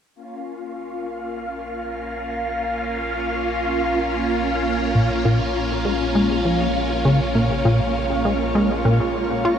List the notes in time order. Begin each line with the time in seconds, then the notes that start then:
0.15 A#1 A#3 C#4 F4
4.95 A#2
5.25 A#2
5.85 G#3
6.15 G#3
6.45 F3
7.05 C#3
7.35 A#2
7.65 A#2
8.25 G#3
8.55 G#3
8.85 A#2
9.45 F4